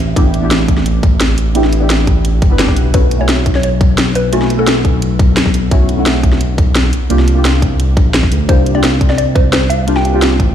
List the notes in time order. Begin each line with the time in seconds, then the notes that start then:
Already playing: A1
0.16 A1 B3 D4 E4 G4, kick, closed hi-hat
0.34 closed hi-hat
0.41 B3 D4 E4 G4
0.51 snare, closed hi-hat
0.68 kick, closed hi-hat
0.78 snare
0.86 closed hi-hat
1.03 kick, closed hi-hat
1.21 snare, closed hi-hat
1.38 open hi-hat
1.54 A1 B3 D4 E4 G4, closed hi-hat
1.64 snare
1.73 closed hi-hat
1.79 B3 D4 E4 G4
1.90 snare, closed hi-hat
2.07 kick, closed hi-hat
2.25 closed hi-hat
2.42 G1, kick, closed hi-hat
2.50 B3 D4 E4 B4
2.58 B3 D4 E4 G4, snare, closed hi-hat
2.68 kick
2.77 B1, open hi-hat
2.93 B1 A3 C#4 E4 F#4 B4, kick, closed hi-hat
3.11 closed hi-hat
3.19 A3 C#4 E4 F#4 C#5
3.29 snare, closed hi-hat
3.46 kick, closed hi-hat
3.55 C#5, snare
3.63 C#5, closed hi-hat
3.81 kick, closed hi-hat
3.98 snare, closed hi-hat
4.15 B4, open hi-hat
4.32 B1 A3 C#4 E4 F#4, closed hi-hat
4.42 snare
4.50 closed hi-hat
4.57 A3 C#4 E4 F#4 A4
4.67 snare, closed hi-hat
4.85 kick, closed hi-hat
5.02 closed hi-hat
5.19 kick, closed hi-hat
5.37 snare, closed hi-hat
5.46 kick
5.54 open hi-hat
5.71 B1 A3 C#4 E4 F#4, kick, closed hi-hat
5.89 closed hi-hat
5.96 A3 C#4 E4 F#4
6.06 snare, closed hi-hat
6.23 kick, closed hi-hat
6.32 snare
6.41 closed hi-hat
6.58 kick, closed hi-hat
6.75 snare, closed hi-hat
6.93 open hi-hat
7.09 C2 A#3 D4 F4 G4, closed hi-hat
7.19 snare
7.28 closed hi-hat
7.35 A#3 D4 F4 G4
7.45 snare, closed hi-hat
7.62 kick, closed hi-hat
7.80 closed hi-hat
7.97 A#1, kick, closed hi-hat
8.14 snare, closed hi-hat
8.23 kick
8.32 D2, open hi-hat
8.48 C2 A#3 D4 F4 G4 C5, kick, closed hi-hat
8.66 closed hi-hat
8.73 A#3 D4 F4 G4 D5
8.84 snare, closed hi-hat
9.01 kick, closed hi-hat
9.09 D5, snare
9.18 D5, closed hi-hat
9.35 C5, kick, closed hi-hat
9.52 C5, snare, closed hi-hat
9.70 F5, open hi-hat
9.87 C2 A#3 D4 F4 G4, closed hi-hat
9.96 G5, snare
10.05 closed hi-hat
10.13 A#3 D4 F4 G4
10.22 snare, closed hi-hat
10.40 A1, kick, closed hi-hat